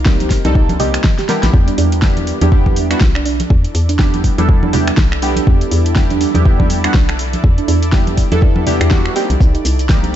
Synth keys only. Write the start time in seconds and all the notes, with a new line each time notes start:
0.06 G3 A#3 C4 D#4 G4
0.45 G3 A#3 C4 D#4 A4
0.80 G3 A#3 C4 D#4 G4
1.29 G3 B3 D4 E4 G4
2.03 G3 B3 D4 E4 G4
2.42 G3 B3 D4 E4 G4
2.52 G3 B3 D4 E4 G4
2.91 G3 B3 D4 E4 F#4
3.99 G3 B3 D4 E4 G4
4.38 G3 B3 D4 E4 A4
4.73 G3 B3 D4 E4 G4
5.22 G3 B3 D4 E4 G4
5.96 G3 B3 D4 E4 G4
6.35 G3 B3 D4 E4 G4
6.45 G3 B3 D4 E4 G4
6.84 G3 B3 D4 E4 F#4
7.93 G3 B3 D4 E4 G4
8.32 G3 B3 D4 E4 A4
8.67 G3 B3 D4 E4 G4
8.91 G3 B3 D4 E4 F#4
9.16 G3 A#3 C4 D#4 G4
9.90 G3 A#3 C4 D#4 G4